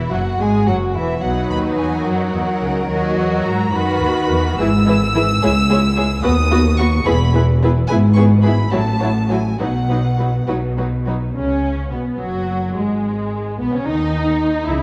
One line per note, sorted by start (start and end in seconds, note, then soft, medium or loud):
0.00 0.10 E1 medium
0.00 0.11 E2 medium
0.00 0.12 E3 medium
0.00 0.12 E4 medium
0.00 0.12 E5 medium
0.11 0.39 F#1 medium
0.11 0.39 F#2 medium
0.11 0.19 F#3 medium
0.11 0.39 F#4 medium
0.11 0.40 F#5 medium
0.39 0.66 G#1 medium
0.39 0.67 G#2 medium
0.39 0.66 G#3 medium
0.39 0.67 G#4 medium
0.39 0.68 G#5 medium
0.66 0.95 F#1 medium
0.66 0.95 F#2 medium
0.66 0.75 F#3 medium
0.66 0.94 F#4 medium
0.66 0.75 F#5 medium
0.94 1.22 E1 medium
0.94 1.22 E2 medium
0.94 1.22 E3 medium
0.94 1.22 E4 medium
0.94 1.22 E5 medium
1.22 1.48 B1 medium
1.22 1.48 B2 medium
1.22 2.84 F#3 medium
1.22 2.84 D#4 medium
1.22 2.84 F#4 medium
1.22 2.01 B4 medium
1.22 1.50 F#5 medium
1.50 1.77 D#2 medium
1.50 1.77 D#3 medium
1.50 1.58 B5 medium
1.77 2.05 E2 medium
1.77 2.05 E3 medium
1.77 2.05 G#5 medium
2.05 2.32 F#2 medium
2.05 2.32 F#3 medium
2.05 3.72 A#4 medium
2.05 2.88 F#5 medium
2.33 2.41 E2 medium
2.33 2.41 E3 medium
2.60 2.88 C#2 medium
2.60 2.88 C#3 medium
2.89 3.16 D#2 medium
2.89 3.16 D#3 medium
2.89 3.70 F#3 medium
2.89 3.70 F#4 medium
2.89 3.43 D#5 medium
3.16 3.44 E2 medium
3.16 3.44 E3 medium
3.43 3.71 G#2 medium
3.43 3.71 G#3 medium
3.43 3.72 A#5 medium
3.71 3.99 F#2 medium
3.71 4.57 D#3 medium
3.71 4.00 F#3 medium
3.71 4.56 F#4 medium
3.71 4.57 F#4 medium
3.71 4.57 B4 medium
3.71 4.59 B5 medium
4.00 4.08 D#2 medium
4.00 4.09 D#3 medium
4.29 4.57 E2 medium
4.29 4.58 E3 medium
4.59 5.32 G#1 medium
4.59 5.32 G#2 medium
4.59 4.67 E3 medium
4.59 4.67 E4 medium
4.59 4.67 G#4 medium
4.59 4.67 B4 medium
4.59 6.20 E6 loud
4.86 4.95 E3 medium
4.86 4.94 E4 medium
4.86 4.95 G#4 medium
4.86 4.96 B4 medium
5.14 5.23 E3 medium
5.14 5.22 E4 medium
5.14 5.23 G#4 medium
5.14 5.23 B4 medium
5.42 6.13 C#2 medium
5.42 6.14 C#2 medium
5.42 5.51 G#3 medium
5.42 5.51 E4 medium
5.42 5.50 G#4 medium
5.42 5.50 C#5 medium
5.69 5.77 G#3 medium
5.69 5.78 E4 medium
5.69 5.78 G#4 medium
5.69 5.77 C#5 medium
5.96 6.05 G#3 medium
5.96 6.05 E4 medium
5.96 6.04 G#4 medium
5.96 6.04 C#5 medium
6.23 6.95 D#2 medium
6.23 6.96 D#2 medium
6.23 6.31 B3 medium
6.23 6.31 F#4 medium
6.23 6.31 B4 medium
6.23 6.76 D#6 loud
6.51 6.59 B3 medium
6.51 6.59 F#4 medium
6.51 6.59 B4 medium
6.77 6.86 B3 medium
6.77 6.86 F#4 medium
6.77 6.86 B4 medium
6.77 7.05 C#6 loud
7.05 7.78 E1 medium
7.05 7.79 E2 medium
7.05 7.15 B3 medium
7.05 7.15 E4 medium
7.05 7.14 G#4 medium
7.05 7.13 B4 medium
7.05 7.33 B5 loud
7.34 7.42 B3 medium
7.34 7.42 E4 medium
7.34 7.42 G#4 medium
7.34 7.42 B4 medium
7.62 7.71 B3 medium
7.62 7.71 E4 medium
7.62 7.70 G#4 medium
7.62 7.70 B4 medium
7.88 8.61 G#1 medium
7.88 8.62 G#2 medium
7.88 7.98 B3 medium
7.88 7.98 E4 medium
7.88 7.96 G#4 medium
7.88 7.96 B4 medium
7.88 7.96 G#5 loud
8.15 8.25 B3 medium
8.15 8.25 E4 medium
8.15 8.24 G#4 medium
8.15 8.24 B4 medium
8.15 8.23 C#6 medium
8.43 8.53 B3 medium
8.43 8.52 E4 medium
8.43 8.51 G#4 medium
8.43 8.51 B4 medium
8.43 8.71 B5 medium
8.71 9.49 A1 medium
8.71 9.49 A2 medium
8.71 8.81 F#3 medium
8.71 8.81 E4 medium
8.71 8.79 F#4 medium
8.71 8.79 C#5 medium
8.71 9.30 A5 medium
9.00 9.09 F#3 medium
9.00 9.09 E4 medium
9.00 9.08 F#4 medium
9.00 9.08 C#5 medium
9.28 9.38 F#3 soft
9.28 9.39 E4 medium
9.28 9.36 F#4 soft
9.28 9.36 C#5 medium
9.28 9.60 G#5 medium
9.58 10.38 B1 medium
9.58 10.38 B2 medium
9.58 9.68 F#3 medium
9.58 9.68 D#4 medium
9.58 9.66 F#4 medium
9.58 9.67 B4 medium
9.58 10.46 F#5 medium
9.88 9.99 F#3 soft
9.88 9.99 D#4 soft
9.88 9.97 F#4 soft
9.88 9.96 B4 soft
10.18 10.27 F#3 soft
10.18 10.28 D#4 soft
10.18 10.26 F#4 soft
10.18 10.26 B4 soft
10.47 11.25 B1 medium
10.47 11.26 B2 medium
10.47 10.56 F#3 soft
10.47 10.57 D#4 soft
10.47 10.55 F#4 medium
10.47 10.55 B4 medium
10.77 10.86 F#3 soft
10.77 10.86 D#4 soft
10.77 10.85 F#4 soft
10.77 10.85 B4 soft
11.06 11.15 F#3 soft
11.06 11.15 D#4 soft
11.06 11.14 F#4 soft
11.06 11.14 B4 soft
11.35 11.88 C#2 medium
11.35 11.88 C#3 medium
11.35 11.87 C#4 medium
11.35 11.88 C#4 medium
11.91 12.00 B1 soft
11.91 11.99 B2 soft
11.91 11.99 B3 soft
11.91 12.19 B3 soft
12.19 12.74 F#1 soft
12.19 12.74 F#2 medium
12.19 12.75 F#3 medium
12.19 12.74 F#4 medium
12.74 13.59 G#1 soft
12.74 13.59 G#2 soft
12.74 13.57 G#3 medium
12.74 13.57 G#3 soft
12.74 13.59 G#3 soft
13.59 13.64 B1 medium
13.59 13.65 B2 medium
13.59 13.72 B3 medium
13.59 13.73 B3 medium
13.59 13.72 B3 medium
13.72 13.86 C#3 medium
13.72 13.86 C#4 medium
13.72 13.87 C#4 medium
13.85 14.67 D#2 medium
13.85 14.68 D#3 medium
13.85 14.68 D#4 medium
13.85 14.66 D#4 medium
14.68 14.82 C#2 medium
14.68 14.82 C#3 medium
14.68 14.82 E4 medium